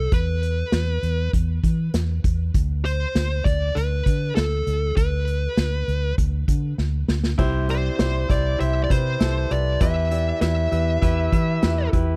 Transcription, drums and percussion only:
0.12 kick, closed hi-hat
0.43 closed hi-hat
0.72 snare, closed hi-hat
1.03 closed hi-hat
1.33 kick, closed hi-hat
1.64 kick, closed hi-hat
1.94 snare, closed hi-hat
2.24 kick, closed hi-hat
2.54 kick, closed hi-hat
2.85 closed hi-hat
3.15 snare, closed hi-hat
3.45 kick, closed hi-hat
3.77 closed hi-hat
4.06 kick, closed hi-hat
4.37 snare, closed hi-hat
4.67 closed hi-hat
4.97 kick, closed hi-hat
5.28 closed hi-hat
5.57 snare, closed hi-hat
5.89 closed hi-hat
6.18 kick, closed hi-hat
6.48 kick, closed hi-hat
6.78 snare
7.08 snare
7.24 snare
7.39 kick, crash
7.69 closed hi-hat
7.99 snare, closed hi-hat
8.30 kick, closed hi-hat
8.60 closed hi-hat
8.90 kick, closed hi-hat
9.20 snare, closed hi-hat
9.51 closed hi-hat
9.81 kick, closed hi-hat
10.11 closed hi-hat
10.41 snare, closed hi-hat
10.72 closed hi-hat
11.02 kick, closed hi-hat
11.33 kick, closed hi-hat
11.63 snare, closed hi-hat
11.93 kick, closed hi-hat

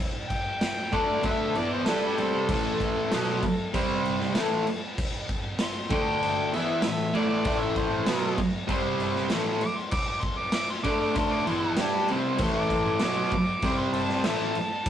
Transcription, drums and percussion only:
0.30 kick, crash
0.61 snare, crash
0.93 kick, crash
1.23 kick, crash
1.55 crash
1.86 snare, crash
2.18 crash
2.49 kick, crash
2.80 kick, crash
3.12 snare, crash
3.43 kick, crash
3.74 kick, crash
4.05 crash
4.20 snare
4.35 snare, crash
4.67 crash
4.98 kick, crash
5.29 kick, crash
5.59 snare, crash
5.90 kick, crash
6.23 crash
6.53 crash
6.82 snare, crash
7.15 crash
7.45 kick, crash
7.76 kick, crash
8.07 snare, crash
8.38 kick, crash
8.69 kick, crash
9.00 crash
9.16 snare
9.30 snare, crash
9.61 crash
9.91 kick, crash
10.21 kick, crash
10.52 snare, crash
10.84 kick, crash
11.15 kick, crash
11.47 crash
11.77 snare, crash
12.08 crash
12.38 kick, crash
12.70 kick, crash
13.00 snare, crash
13.31 kick, crash
13.62 kick, crash
13.93 crash
14.09 snare
14.24 snare, crash
14.55 crash
14.86 kick, crash

